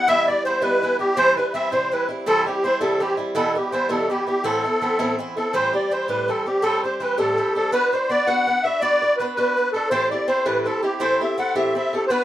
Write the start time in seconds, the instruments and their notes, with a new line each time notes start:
0.08 steel-string acoustic guitar B2 E3 G3 B3 E4, accordion E5
0.27 steel-string acoustic guitar G3 B3 E4, accordion D5
0.45 steel-string acoustic guitar E3 G3 B3 E4, accordion C5
0.62 steel-string acoustic guitar B2 E3 G3 B3 E4, accordion B4
0.83 steel-string acoustic guitar E3 G3 B3 E4
0.99 steel-string acoustic guitar G3 B3 E4, accordion G4
1.17 steel-string acoustic guitar C3 E3 G3 C4 E4, accordion C5
1.36 steel-string acoustic guitar G3 C4 E4, accordion B4
1.54 steel-string acoustic guitar E3 G3 C4 E4, accordion E5
1.71 steel-string acoustic guitar C3 E3 G3 C4 E4, accordion C5
1.91 steel-string acoustic guitar E3 G3 C4 E4, accordion B4
2.09 steel-string acoustic guitar G3 C4 E4
2.26 steel-string acoustic guitar C3 E3 G3 C4 E4, accordion A4
2.46 steel-string acoustic guitar G3 C4 E4, accordion G4
2.63 steel-string acoustic guitar E3 G3 C4 E4, accordion C5
2.80 steel-string acoustic guitar C3 E3 G3 C4 E4, accordion A4
3.00 steel-string acoustic guitar E3 G3 C4 E4, accordion G4
3.17 steel-string acoustic guitar G3 C4 E4
3.35 steel-string acoustic guitar B2 E3 G3 B3 E4, accordion A4
3.55 steel-string acoustic guitar G3 B3 E4, accordion G4
3.72 steel-string acoustic guitar E3 G3 B3 E4, accordion C5
3.89 steel-string acoustic guitar B2 E3 G3 B3 E4, accordion A4
4.09 steel-string acoustic guitar E3 G3 B3 E4, accordion G4
4.27 steel-string acoustic guitar G3 B3 E4, accordion G4
4.44 steel-string acoustic guitar A2 E3 B3 C4 E4, accordion A4
4.64 steel-string acoustic guitar B3 C4 E4
4.82 steel-string acoustic guitar E3 B3 C4 E4
4.99 steel-string acoustic guitar A2 E3 B3 C4 E4
5.19 steel-string acoustic guitar E3 B3 C4 E4
5.37 steel-string acoustic guitar B3 C4 E4, accordion A4
5.53 steel-string acoustic guitar A2 E3 G3 C4 G4, accordion C5
5.73 steel-string acoustic guitar G3 C4 G4, accordion D5
5.91 steel-string acoustic guitar E3 G3 C4 G4, accordion C5
6.08 steel-string acoustic guitar A2 E3 G3 C4 G4, accordion B4
6.28 steel-string acoustic guitar E3 G3 C4 G4, accordion A4
6.46 steel-string acoustic guitar G3 C4 G4, accordion G4
6.62 steel-string acoustic guitar A2 E3 G3 C4 G4, accordion A4
6.83 steel-string acoustic guitar G3 C4 G4, accordion C5
7.00 steel-string acoustic guitar E3 G3 C4 G4, accordion B4
7.18 steel-string acoustic guitar A2 E3 G3 C4 G4, accordion A4
7.37 steel-string acoustic guitar E3 G3 C4 G4
7.55 steel-string acoustic guitar G3 C4 G4, accordion A4
7.72 steel-string acoustic guitar B3 D4 F#4 B4, accordion B4
7.92 steel-string acoustic guitar D4 F#4 B4, accordion C5
8.10 steel-string acoustic guitar B3 D4 F#4 B4, accordion D5
8.27 steel-string acoustic guitar B3 D4 F#4 B4, accordion F#5
8.47 steel-string acoustic guitar B3 D4 F#4 B4
8.63 steel-string acoustic guitar D4 F#4 B4, accordion E5
8.81 steel-string acoustic guitar B3 D4 F#4 B4, accordion D5
9.02 steel-string acoustic guitar D4 F#4 B4
9.17 steel-string acoustic guitar B3 D4 F#4, accordion B4
9.22 steel-string acoustic guitar B4
9.35 steel-string acoustic guitar B3 D4 F#4 B4, accordion B4
9.57 steel-string acoustic guitar B3 D4 F#4 B4
9.73 steel-string acoustic guitar D4 F#4 B4, accordion A4
9.90 steel-string acoustic guitar A2 E3 C4 E4 G4 A4, accordion C5
10.11 steel-string acoustic guitar C4 E4 G4 A4, accordion D5
10.28 steel-string acoustic guitar C4 E4 G4 A4, accordion C5
10.45 steel-string acoustic guitar A2 E3 C4 E4 G4 A4, accordion B4
10.62 steel-string acoustic guitar C4, accordion A4 B4
10.66 steel-string acoustic guitar E4 G4 A4
10.83 steel-string acoustic guitar C4 E4 G4 A4, accordion G4
11.00 steel-string acoustic guitar A2 E3 C4 E4 G4 A4, accordion C5
11.21 steel-string acoustic guitar C4 E4 G4 A4, accordion E5
11.38 steel-string acoustic guitar C4 E4 G4 A4, accordion F#5
11.55 steel-string acoustic guitar A2 E3 C4 E4 G4 A4, accordion E5
11.75 steel-string acoustic guitar C4 E4 G4 A4, accordion E5
11.93 steel-string acoustic guitar C4 E4 G4 A4, accordion A4
12.07 steel-string acoustic guitar B3, accordion B4 C5
12.11 steel-string acoustic guitar D4 F#4 B4